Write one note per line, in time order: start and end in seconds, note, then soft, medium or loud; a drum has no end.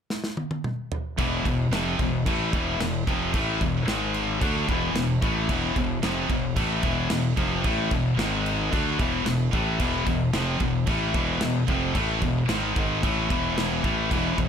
0.10 snare medium
0.24 snare medium
0.37 high tom medium
0.51 high tom medium
0.64 mid tom medium
0.92 floor tom medium
1.18 1.44 E1 medium
1.18 1.45 E2 medium
1.18 1.45 B2 loud
1.18 1.45 E3 loud
1.18 kick loud
1.18 crash medium
1.45 1.70 E1 medium
1.45 1.68 E2 medium
1.45 1.68 B2 medium
1.45 kick medium
1.45 crash medium
1.71 1.97 F1 medium
1.71 1.99 F2 medium
1.71 1.99 C3 loud
1.71 1.99 F3 loud
1.71 snare loud
1.71 crash medium
1.99 2.25 E1 medium
1.99 2.21 E2 medium
1.99 2.22 B2 medium
1.99 kick medium
1.99 crash medium
2.26 2.51 A1 medium
2.26 2.53 A2 medium
2.26 2.53 E3 medium
2.26 2.53 A3 loud
2.26 kick loud
2.26 crash medium
2.53 2.78 E1 medium
2.53 2.80 E2 medium
2.53 2.80 B2 loud
2.53 2.80 E3 loud
2.53 kick loud
2.53 crash medium
2.80 3.05 E1 medium
2.80 3.02 E2 medium
2.80 3.02 B2 medium
2.80 snare loud
2.80 crash medium
3.07 3.32 F1 loud
3.07 3.33 F2 medium
3.07 3.33 C3 loud
3.07 3.34 F3 loud
3.07 kick loud
3.07 crash medium
3.33 3.59 A1 loud
3.33 3.60 A2 medium
3.33 3.60 E3 medium
3.33 3.61 A3 medium
3.33 kick loud
3.33 crash medium
3.60 3.85 E1 medium
3.60 3.83 E2 medium
3.60 3.83 B2 medium
3.60 kick medium
3.60 crash medium
3.86 4.37 G#1 medium
3.86 4.40 G#2 medium
3.86 4.41 D#3 loud
3.86 4.41 G#3 medium
3.86 snare loud
3.86 crash medium
4.14 crash medium
4.41 4.67 D2 medium
4.41 4.67 D3 medium
4.41 4.68 A3 loud
4.41 4.68 D4 loud
4.41 kick loud
4.41 crash medium
4.68 4.93 E1 medium
4.68 4.94 E2 medium
4.68 4.93 B2 loud
4.68 4.95 E3 loud
4.68 kick loud
4.68 crash medium
4.95 5.20 E1 medium
4.95 5.17 E2 medium
4.95 5.16 B2 medium
4.95 snare loud
4.95 crash medium
5.22 5.47 A1 loud
5.22 5.48 A2 loud
5.22 5.49 E3 loud
5.22 5.48 A3 loud
5.22 kick loud
5.22 crash medium
5.49 5.74 E1 loud
5.49 5.75 E2 loud
5.49 5.76 B2 medium
5.49 5.76 E3 loud
5.49 kick loud
5.49 crash medium
5.76 6.01 E1 medium
5.76 5.98 E2 medium
5.76 5.98 B2 medium
5.76 kick medium
5.76 crash medium
6.03 6.28 F1 medium
6.03 6.29 F2 medium
6.03 6.29 C3 loud
6.03 6.30 F3 loud
6.03 snare loud
6.03 crash medium
6.29 6.54 E1 medium
6.29 6.51 E2 medium
6.29 6.52 B2 medium
6.29 kick medium
6.29 crash medium
6.56 6.82 A1 medium
6.56 6.83 A2 medium
6.56 6.83 E3 medium
6.56 6.83 A3 loud
6.56 kick loud
6.56 crash medium
6.83 7.08 E1 loud
6.83 7.09 E2 medium
6.83 7.10 B2 medium
6.83 7.10 E3 loud
6.83 kick loud
6.83 crash medium
7.10 7.36 E1 medium
7.10 7.32 E2 medium
7.10 7.32 B2 medium
7.10 snare loud
7.10 crash medium
7.37 7.62 F1 loud
7.37 7.64 F2 medium
7.37 7.64 C3 loud
7.37 7.64 F3 loud
7.37 kick loud
7.37 crash medium
7.64 7.89 A1 medium
7.64 7.91 A2 loud
7.64 7.91 E3 loud
7.64 7.92 A3 loud
7.64 kick loud
7.64 crash medium
7.91 8.16 E1 medium
7.91 8.14 E2 medium
7.91 8.12 B2 medium
7.91 kick medium
7.91 crash medium
7.95 8.14 B2 medium
8.18 8.68 G#1 medium
8.18 8.71 G#2 medium
8.18 8.71 D#3 medium
8.18 8.72 G#3 medium
8.18 snare loud
8.18 crash medium
8.46 crash medium
8.72 8.97 D2 medium
8.72 8.98 D3 medium
8.72 8.98 A3 medium
8.72 8.98 D4 loud
8.72 kick loud
8.72 crash medium
8.99 9.24 E1 medium
8.99 9.25 E2 medium
8.99 9.25 B2 medium
8.99 9.26 E3 loud
8.99 kick loud
8.99 crash medium
9.26 9.51 E1 medium
9.26 9.48 E2 medium
9.26 9.47 B2 medium
9.26 snare loud
9.26 crash medium
9.53 9.78 A1 loud
9.53 9.79 A2 medium
9.53 9.80 E3 medium
9.53 9.80 A3 medium
9.53 kick loud
9.53 crash medium
9.80 10.05 E1 loud
9.80 10.06 E2 medium
9.80 10.06 B2 loud
9.80 10.07 E3 medium
9.80 kick loud
9.80 crash medium
10.06 10.32 E1 medium
10.06 10.29 E2 medium
10.06 10.29 B2 medium
10.06 kick medium
10.06 crash medium
10.33 10.58 F1 medium
10.33 10.60 F2 medium
10.33 10.60 C3 loud
10.33 10.60 F3 loud
10.33 snare loud
10.33 crash medium
10.60 10.85 E1 medium
10.60 10.83 E2 medium
10.60 10.83 B2 medium
10.60 kick medium
10.60 crash medium
10.87 11.12 A1 medium
10.87 11.14 A2 medium
10.87 11.15 E3 loud
10.87 11.15 A3 loud
10.87 kick loud
10.87 crash medium
11.14 11.39 E1 medium
11.14 11.41 E2 medium
11.14 11.41 B2 medium
11.14 11.41 E3 loud
11.14 kick loud
11.14 crash medium
11.41 11.67 E1 medium
11.41 11.64 E2 medium
11.41 11.64 B2 medium
11.41 snare loud
11.41 crash medium
11.68 11.93 F1 medium
11.68 11.95 F2 medium
11.68 11.95 C3 medium
11.68 11.96 F3 loud
11.68 kick loud
11.68 crash medium
11.95 12.20 A1 medium
11.95 12.21 A2 medium
11.95 12.22 E3 medium
11.95 12.22 A3 loud
11.95 kick loud
11.95 crash medium
12.21 12.47 E1 medium
12.21 12.44 E2 medium
12.21 12.44 B2 medium
12.21 kick loud
12.21 crash medium
12.48 12.74 G#1 medium
12.48 12.74 G#2 medium
12.48 12.75 D#3 loud
12.48 12.75 G#3 medium
12.48 snare loud
12.48 crash medium
12.76 13.01 G#1 medium
12.76 13.02 G#2 medium
12.76 13.02 D#3 loud
12.76 13.02 G#3 loud
12.76 kick loud
12.76 crash medium
13.03 13.28 A1 loud
13.03 13.29 A2 loud
13.03 13.29 E3 medium
13.03 13.30 A3 loud
13.03 kick loud
13.03 crash medium
13.29 13.80 E1 medium
13.29 13.83 E2 loud
13.29 13.83 B2 medium
13.29 13.83 E3 loud
13.29 kick loud
13.29 crash medium
13.58 snare loud
13.58 crash medium
13.84 14.09 A1 loud
13.84 14.10 A2 medium
13.84 14.10 E3 medium
13.84 14.11 A3 loud
13.84 kick loud
13.84 crash medium
14.10 14.36 E1 medium
14.10 14.36 E2 loud
14.10 14.36 B2 loud
14.10 14.37 E3 loud
14.10 kick loud
14.10 crash medium
14.37 14.49 E1 medium
14.37 14.49 E2 medium
14.37 14.49 B2 medium
14.37 kick medium
14.37 crash medium